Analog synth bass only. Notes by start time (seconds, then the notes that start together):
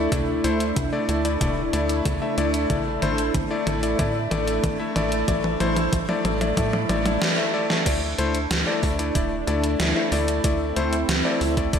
0.12 D2
0.44 D2
0.76 D2
1.09 D2
1.41 D1
1.73 D2
2.05 D2
2.38 D2
2.70 A1
3.02 A1
3.34 A1
3.67 A1
3.99 A2
4.31 A1
4.64 A1
4.96 A1
5.28 A1
5.60 A1
5.93 A1
6.25 A1
6.57 A2
6.89 A1
7.86 D2
8.19 D2
8.51 D2
8.83 D2
9.15 D1
9.48 D2
9.80 D2
10.12 D2
10.44 D2
10.76 D2
11.09 D2
11.41 D2
11.73 D1